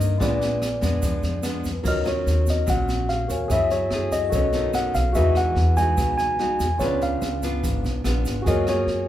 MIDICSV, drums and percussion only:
0, 0, Header, 1, 2, 480
1, 0, Start_track
1, 0, Key_signature, -6, "minor"
1, 0, Tempo, 412939
1, 230, Time_signature, 4, 2, 24, 8
1, 10557, End_track
2, 0, Start_track
2, 0, Title_t, "Drums"
2, 1, Note_on_c, 9, 36, 20
2, 1, Note_on_c, 9, 38, 19
2, 12, Note_on_c, 9, 82, 59
2, 117, Note_off_c, 9, 38, 0
2, 118, Note_off_c, 9, 36, 0
2, 129, Note_off_c, 9, 82, 0
2, 242, Note_on_c, 9, 36, 50
2, 244, Note_on_c, 9, 37, 49
2, 244, Note_on_c, 9, 38, 19
2, 248, Note_on_c, 9, 82, 53
2, 358, Note_off_c, 9, 36, 0
2, 360, Note_off_c, 9, 37, 0
2, 360, Note_off_c, 9, 38, 0
2, 365, Note_off_c, 9, 82, 0
2, 481, Note_on_c, 9, 38, 23
2, 488, Note_on_c, 9, 82, 27
2, 597, Note_off_c, 9, 38, 0
2, 604, Note_off_c, 9, 82, 0
2, 718, Note_on_c, 9, 37, 51
2, 718, Note_on_c, 9, 38, 21
2, 726, Note_on_c, 9, 82, 49
2, 834, Note_off_c, 9, 37, 0
2, 834, Note_off_c, 9, 38, 0
2, 842, Note_off_c, 9, 82, 0
2, 955, Note_on_c, 9, 38, 20
2, 957, Note_on_c, 9, 36, 20
2, 960, Note_on_c, 9, 82, 52
2, 1072, Note_off_c, 9, 38, 0
2, 1073, Note_off_c, 9, 36, 0
2, 1076, Note_off_c, 9, 82, 0
2, 1188, Note_on_c, 9, 82, 64
2, 1192, Note_on_c, 9, 38, 21
2, 1195, Note_on_c, 9, 36, 51
2, 1304, Note_off_c, 9, 82, 0
2, 1308, Note_off_c, 9, 38, 0
2, 1312, Note_off_c, 9, 36, 0
2, 1428, Note_on_c, 9, 82, 24
2, 1434, Note_on_c, 9, 38, 21
2, 1544, Note_off_c, 9, 82, 0
2, 1551, Note_off_c, 9, 38, 0
2, 1660, Note_on_c, 9, 82, 53
2, 1665, Note_on_c, 9, 37, 53
2, 1665, Note_on_c, 9, 38, 22
2, 1776, Note_off_c, 9, 82, 0
2, 1782, Note_off_c, 9, 37, 0
2, 1782, Note_off_c, 9, 38, 0
2, 1907, Note_on_c, 9, 82, 54
2, 1913, Note_on_c, 9, 36, 21
2, 1919, Note_on_c, 9, 38, 19
2, 2024, Note_off_c, 9, 82, 0
2, 2029, Note_off_c, 9, 36, 0
2, 2036, Note_off_c, 9, 38, 0
2, 2151, Note_on_c, 9, 82, 52
2, 2153, Note_on_c, 9, 36, 50
2, 2156, Note_on_c, 9, 38, 19
2, 2156, Note_on_c, 9, 49, 55
2, 2267, Note_off_c, 9, 82, 0
2, 2269, Note_off_c, 9, 36, 0
2, 2273, Note_off_c, 9, 38, 0
2, 2273, Note_off_c, 9, 49, 0
2, 2385, Note_on_c, 9, 82, 27
2, 2395, Note_on_c, 9, 37, 56
2, 2395, Note_on_c, 9, 38, 20
2, 2501, Note_off_c, 9, 82, 0
2, 2512, Note_off_c, 9, 37, 0
2, 2512, Note_off_c, 9, 38, 0
2, 2638, Note_on_c, 9, 38, 22
2, 2641, Note_on_c, 9, 82, 50
2, 2755, Note_off_c, 9, 38, 0
2, 2758, Note_off_c, 9, 82, 0
2, 2866, Note_on_c, 9, 82, 57
2, 2872, Note_on_c, 9, 36, 22
2, 2880, Note_on_c, 9, 38, 22
2, 2982, Note_off_c, 9, 82, 0
2, 2989, Note_off_c, 9, 36, 0
2, 2996, Note_off_c, 9, 38, 0
2, 3107, Note_on_c, 9, 82, 65
2, 3112, Note_on_c, 9, 37, 53
2, 3112, Note_on_c, 9, 38, 20
2, 3113, Note_on_c, 9, 36, 51
2, 3223, Note_off_c, 9, 82, 0
2, 3228, Note_off_c, 9, 37, 0
2, 3228, Note_off_c, 9, 38, 0
2, 3229, Note_off_c, 9, 36, 0
2, 3350, Note_on_c, 9, 82, 23
2, 3357, Note_on_c, 9, 38, 21
2, 3466, Note_off_c, 9, 82, 0
2, 3473, Note_off_c, 9, 38, 0
2, 3591, Note_on_c, 9, 38, 22
2, 3707, Note_off_c, 9, 38, 0
2, 3828, Note_on_c, 9, 38, 21
2, 3833, Note_on_c, 9, 36, 20
2, 3836, Note_on_c, 9, 82, 59
2, 3945, Note_off_c, 9, 38, 0
2, 3949, Note_off_c, 9, 36, 0
2, 3952, Note_off_c, 9, 82, 0
2, 4066, Note_on_c, 9, 37, 48
2, 4066, Note_on_c, 9, 38, 19
2, 4070, Note_on_c, 9, 36, 49
2, 4071, Note_on_c, 9, 82, 53
2, 4183, Note_off_c, 9, 37, 0
2, 4183, Note_off_c, 9, 38, 0
2, 4187, Note_off_c, 9, 36, 0
2, 4188, Note_off_c, 9, 82, 0
2, 4304, Note_on_c, 9, 38, 20
2, 4311, Note_on_c, 9, 82, 25
2, 4421, Note_off_c, 9, 38, 0
2, 4427, Note_off_c, 9, 82, 0
2, 4540, Note_on_c, 9, 37, 53
2, 4540, Note_on_c, 9, 38, 22
2, 4656, Note_off_c, 9, 37, 0
2, 4656, Note_off_c, 9, 38, 0
2, 4783, Note_on_c, 9, 38, 21
2, 4788, Note_on_c, 9, 36, 22
2, 4789, Note_on_c, 9, 82, 56
2, 4899, Note_off_c, 9, 38, 0
2, 4904, Note_off_c, 9, 36, 0
2, 4905, Note_off_c, 9, 82, 0
2, 5020, Note_on_c, 9, 38, 21
2, 5024, Note_on_c, 9, 82, 62
2, 5029, Note_on_c, 9, 36, 52
2, 5136, Note_off_c, 9, 38, 0
2, 5140, Note_off_c, 9, 82, 0
2, 5145, Note_off_c, 9, 36, 0
2, 5260, Note_on_c, 9, 38, 22
2, 5262, Note_on_c, 9, 82, 25
2, 5377, Note_off_c, 9, 38, 0
2, 5378, Note_off_c, 9, 82, 0
2, 5503, Note_on_c, 9, 82, 51
2, 5504, Note_on_c, 9, 37, 53
2, 5504, Note_on_c, 9, 38, 21
2, 5620, Note_off_c, 9, 37, 0
2, 5620, Note_off_c, 9, 38, 0
2, 5620, Note_off_c, 9, 82, 0
2, 5748, Note_on_c, 9, 36, 22
2, 5749, Note_on_c, 9, 82, 59
2, 5750, Note_on_c, 9, 38, 20
2, 5865, Note_off_c, 9, 36, 0
2, 5865, Note_off_c, 9, 82, 0
2, 5866, Note_off_c, 9, 38, 0
2, 5984, Note_on_c, 9, 38, 19
2, 5984, Note_on_c, 9, 82, 54
2, 5987, Note_on_c, 9, 36, 49
2, 6100, Note_off_c, 9, 38, 0
2, 6100, Note_off_c, 9, 82, 0
2, 6103, Note_off_c, 9, 36, 0
2, 6221, Note_on_c, 9, 37, 51
2, 6221, Note_on_c, 9, 38, 20
2, 6233, Note_on_c, 9, 82, 28
2, 6337, Note_off_c, 9, 37, 0
2, 6337, Note_off_c, 9, 38, 0
2, 6349, Note_off_c, 9, 82, 0
2, 6464, Note_on_c, 9, 38, 23
2, 6581, Note_off_c, 9, 38, 0
2, 6705, Note_on_c, 9, 82, 57
2, 6706, Note_on_c, 9, 36, 22
2, 6709, Note_on_c, 9, 38, 22
2, 6821, Note_off_c, 9, 82, 0
2, 6822, Note_off_c, 9, 36, 0
2, 6826, Note_off_c, 9, 38, 0
2, 6942, Note_on_c, 9, 82, 66
2, 6948, Note_on_c, 9, 36, 54
2, 6948, Note_on_c, 9, 37, 55
2, 6948, Note_on_c, 9, 38, 22
2, 7058, Note_off_c, 9, 82, 0
2, 7064, Note_off_c, 9, 36, 0
2, 7064, Note_off_c, 9, 37, 0
2, 7064, Note_off_c, 9, 38, 0
2, 7187, Note_on_c, 9, 38, 20
2, 7189, Note_on_c, 9, 82, 26
2, 7304, Note_off_c, 9, 38, 0
2, 7306, Note_off_c, 9, 82, 0
2, 7432, Note_on_c, 9, 38, 21
2, 7548, Note_off_c, 9, 38, 0
2, 7669, Note_on_c, 9, 38, 22
2, 7669, Note_on_c, 9, 82, 58
2, 7670, Note_on_c, 9, 36, 22
2, 7785, Note_off_c, 9, 38, 0
2, 7785, Note_off_c, 9, 82, 0
2, 7786, Note_off_c, 9, 36, 0
2, 7900, Note_on_c, 9, 82, 58
2, 7910, Note_on_c, 9, 37, 51
2, 7910, Note_on_c, 9, 38, 21
2, 7911, Note_on_c, 9, 36, 49
2, 8017, Note_off_c, 9, 82, 0
2, 8026, Note_off_c, 9, 37, 0
2, 8026, Note_off_c, 9, 38, 0
2, 8027, Note_off_c, 9, 36, 0
2, 8152, Note_on_c, 9, 38, 21
2, 8155, Note_on_c, 9, 82, 26
2, 8268, Note_off_c, 9, 38, 0
2, 8271, Note_off_c, 9, 82, 0
2, 8388, Note_on_c, 9, 82, 49
2, 8391, Note_on_c, 9, 37, 50
2, 8391, Note_on_c, 9, 38, 20
2, 8504, Note_off_c, 9, 82, 0
2, 8507, Note_off_c, 9, 37, 0
2, 8507, Note_off_c, 9, 38, 0
2, 8632, Note_on_c, 9, 82, 55
2, 8633, Note_on_c, 9, 38, 21
2, 8634, Note_on_c, 9, 36, 23
2, 8748, Note_off_c, 9, 82, 0
2, 8750, Note_off_c, 9, 36, 0
2, 8750, Note_off_c, 9, 38, 0
2, 8872, Note_on_c, 9, 38, 21
2, 8876, Note_on_c, 9, 36, 51
2, 8880, Note_on_c, 9, 82, 68
2, 8988, Note_off_c, 9, 38, 0
2, 8993, Note_off_c, 9, 36, 0
2, 8996, Note_off_c, 9, 82, 0
2, 9117, Note_on_c, 9, 82, 25
2, 9127, Note_on_c, 9, 38, 21
2, 9233, Note_off_c, 9, 82, 0
2, 9243, Note_off_c, 9, 38, 0
2, 9350, Note_on_c, 9, 37, 52
2, 9350, Note_on_c, 9, 38, 22
2, 9357, Note_on_c, 9, 82, 49
2, 9466, Note_off_c, 9, 37, 0
2, 9466, Note_off_c, 9, 38, 0
2, 9474, Note_off_c, 9, 82, 0
2, 9592, Note_on_c, 9, 82, 57
2, 9597, Note_on_c, 9, 36, 20
2, 9602, Note_on_c, 9, 38, 23
2, 9709, Note_off_c, 9, 82, 0
2, 9713, Note_off_c, 9, 36, 0
2, 9718, Note_off_c, 9, 38, 0
2, 9835, Note_on_c, 9, 38, 21
2, 9838, Note_on_c, 9, 36, 49
2, 9843, Note_on_c, 9, 82, 55
2, 9951, Note_off_c, 9, 38, 0
2, 9954, Note_off_c, 9, 36, 0
2, 9959, Note_off_c, 9, 82, 0
2, 10076, Note_on_c, 9, 37, 55
2, 10076, Note_on_c, 9, 38, 22
2, 10081, Note_on_c, 9, 82, 26
2, 10193, Note_off_c, 9, 37, 0
2, 10193, Note_off_c, 9, 38, 0
2, 10197, Note_off_c, 9, 82, 0
2, 10319, Note_on_c, 9, 38, 21
2, 10436, Note_off_c, 9, 38, 0
2, 10557, End_track
0, 0, End_of_file